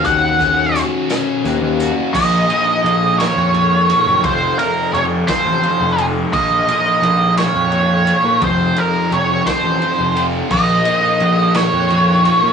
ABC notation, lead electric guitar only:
X:1
M:6/8
L:1/8
Q:3/8=57
K:none
V:1 name="Lead electric guitar"
_g2 z4 | _e3 _d3 | c _B _d c2 z | _e3 _d3 |
c _B _d c2 z | _e3 _d3 |]